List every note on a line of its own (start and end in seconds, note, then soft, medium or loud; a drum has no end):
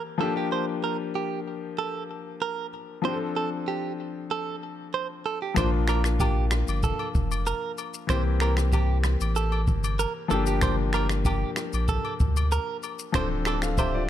0.00 0.18 E3 medium
0.00 0.16 A#3 medium
0.00 0.17 C4 medium
0.00 0.17 G4 medium
0.18 2.68 F3 medium
0.18 2.68 A#3 medium
0.18 2.69 D4 medium
0.18 0.33 A4 medium
0.23 2.70 G4 medium
0.37 0.48 G4 medium
0.52 0.65 C5 loud
0.84 0.96 A#4 medium
1.15 1.40 G4 medium
1.79 2.03 A4 medium
2.42 2.66 A#4 medium
3.02 5.52 F3 medium
3.02 5.53 C4 medium
3.02 5.53 D4 medium
3.02 3.17 C5 loud
3.07 3.12 G4 medium
3.13 5.57 A4 medium
3.37 3.49 A4 medium
3.68 3.92 G4 medium
4.31 4.55 A4 medium
4.94 5.07 C5 medium
5.26 5.38 A4 medium
5.42 5.54 G4 medium
5.54 6.64 A#1 loud
5.54 8.04 F3 medium
5.54 8.05 A#3 medium
5.54 8.06 D4 medium
5.54 5.70 C5 loud
5.54 finger snap medium
5.54 kick loud
5.54 cross-stick medium
5.54 high agogo medium
5.54 shaker medium
5.59 8.07 F4 medium
5.88 6.01 A#4 medium
5.88 finger snap medium
5.88 cross-stick medium
5.88 high agogo medium
5.88 shaker soft
6.04 finger snap medium
6.04 cross-stick medium
6.04 shaker medium
6.20 6.45 G4 medium
6.20 kick medium
6.20 high agogo medium
6.20 low woodblock medium
6.20 shaker medium
6.51 finger snap medium
6.51 cross-stick medium
6.51 shaker medium
6.68 6.93 G1 medium
6.68 high agogo medium
6.68 shaker medium
6.83 7.08 A4 medium
6.83 kick medium
6.83 shaker medium
6.99 high agogo medium
7.15 7.53 F1 loud
7.15 kick loud
7.15 shaker soft
7.31 high agogo medium
7.31 shaker medium
7.46 7.71 A#4 medium
7.46 low woodblock medium
7.46 shaker medium
7.78 high agogo medium
7.78 shaker medium
7.94 shaker medium
8.07 9.17 C2 loud
8.07 10.25 E3 medium
8.07 10.26 A#3 medium
8.07 10.27 C4 medium
8.07 8.22 C5 loud
8.07 finger snap medium
8.07 kick loud
8.07 cross-stick loud
8.07 high agogo medium
8.07 shaker medium
8.12 10.28 G4 medium
8.40 8.54 A#4 medium
8.40 finger snap medium
8.40 cross-stick medium
8.40 high agogo medium
8.40 shaker soft
8.57 finger snap medium
8.57 cross-stick medium
8.57 shaker medium
8.73 8.97 G4 medium
8.73 kick medium
8.73 high agogo medium
8.73 low woodblock medium
8.73 shaker medium
9.04 finger snap medium
9.04 cross-stick medium
9.04 shaker medium
9.21 9.69 A1 loud
9.21 high agogo medium
9.21 shaker medium
9.36 9.61 A4 medium
9.36 shaker medium
9.52 high agogo medium
9.67 10.06 G1 medium
9.67 kick loud
9.67 shaker soft
9.84 high agogo medium
9.84 shaker medium
9.99 10.12 A#4 medium
9.99 low woodblock medium
9.99 shaker medium
10.28 11.45 G1 loud
10.28 12.78 F3 medium
10.28 12.79 A#3 medium
10.28 12.80 D4 medium
10.28 10.43 A4 medium
10.28 high agogo medium
10.28 shaker medium
10.33 12.81 G4 medium
10.46 10.59 G4 medium
10.46 shaker medium
10.61 10.75 C5 loud
10.61 finger snap medium
10.61 kick loud
10.61 cross-stick medium
10.61 high agogo medium
10.61 shaker medium
10.93 11.07 A#4 medium
10.93 finger snap medium
10.93 cross-stick medium
10.93 high agogo medium
10.93 shaker soft
11.09 finger snap medium
11.09 cross-stick medium
11.09 shaker medium
11.25 11.50 G4 medium
11.25 kick medium
11.25 high agogo medium
11.25 low woodblock medium
11.25 shaker medium
11.56 finger snap medium
11.56 cross-stick medium
11.56 shaker medium
11.73 11.99 A#1 medium
11.73 high agogo medium
11.73 shaker medium
11.88 12.13 A4 medium
11.88 kick medium
11.88 shaker medium
12.05 high agogo medium
12.20 12.59 D2 medium
12.20 kick loud
12.20 shaker soft
12.37 high agogo medium
12.37 shaker medium
12.52 12.76 A#4 medium
12.52 low woodblock medium
12.52 shaker medium
12.83 high agogo medium
12.83 shaker medium
12.99 shaker medium
13.12 14.10 D1 loud
13.12 14.10 F3 medium
13.12 13.45 C4 medium
13.12 13.46 D4 medium
13.12 13.28 C5 loud
13.12 finger snap medium
13.12 kick loud
13.12 cross-stick loud
13.12 high agogo medium
13.12 shaker medium
13.17 13.47 A4 medium
13.45 13.59 A4 medium
13.45 finger snap medium
13.45 cross-stick medium
13.45 high agogo medium
13.45 shaker soft
13.62 13.78 A4 medium
13.62 13.77 F5 medium
13.62 finger snap medium
13.62 cross-stick medium
13.62 shaker medium
13.78 13.94 G4 medium
13.78 14.03 C5 medium
13.78 13.94 E5 medium
13.78 kick medium
13.78 high agogo medium
13.78 low woodblock medium
13.78 shaker medium
13.94 14.09 F4 medium
13.94 14.09 D5 medium